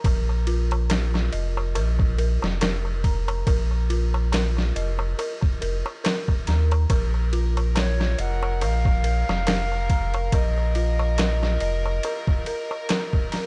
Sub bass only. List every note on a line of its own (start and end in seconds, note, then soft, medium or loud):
0.04 1.29 A#1 medium
1.33 1.77 F1 loud
1.76 2.38 A#1 loud
2.42 3.43 F1 medium
3.47 4.72 A#1 medium
4.76 5.14 F1 loud
5.62 5.83 F1 medium
6.47 6.86 D#2 loud
6.90 8.15 A#1 medium
8.19 8.63 F1 loud
8.62 9.24 A#1 loud
9.28 10.29 F1 loud
10.32 11.58 A#1 medium
11.61 12.00 F1 loud